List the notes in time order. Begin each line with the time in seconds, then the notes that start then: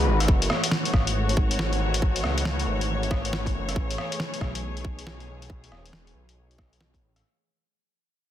Already playing: D#3 G#3 F#4 B4
0.07 G#1
0.20 cross-stick, closed hi-hat
0.28 F#1 E3 A3 F#4 C#5, kick
0.42 closed hi-hat
0.50 cross-stick
0.64 closed hi-hat
0.71 snare
0.85 closed hi-hat
0.93 G#1, kick, cross-stick
1.07 closed hi-hat
1.29 closed hi-hat
1.37 kick
1.51 closed hi-hat
1.59 snare
1.73 closed hi-hat
1.94 closed hi-hat
2.02 kick
2.16 closed hi-hat
2.24 C#2, cross-stick
2.38 closed hi-hat
2.45 snare
2.60 closed hi-hat
2.67 G#1
2.81 closed hi-hat
3.03 closed hi-hat
3.11 kick, cross-stick
3.25 closed hi-hat
3.33 snare
3.46 kick, closed hi-hat
3.55 F#1
3.69 cross-stick, closed hi-hat
3.76 A1 G#4, kick
3.91 closed hi-hat
3.98 cross-stick
4.12 closed hi-hat
4.20 snare
4.34 closed hi-hat
4.41 B1, kick, cross-stick
4.55 closed hi-hat
4.77 closed hi-hat
4.85 kick
4.99 closed hi-hat
5.07 snare
5.20 closed hi-hat
5.42 closed hi-hat
5.50 kick
5.64 closed hi-hat
5.72 E1, cross-stick
5.86 closed hi-hat
5.93 snare
6.07 closed hi-hat
6.15 B1
6.29 closed hi-hat
6.51 closed hi-hat
6.58 kick, cross-stick
6.73 closed hi-hat
6.81 snare
6.94 kick, closed hi-hat
7.02 A1
7.16 cross-stick, closed hi-hat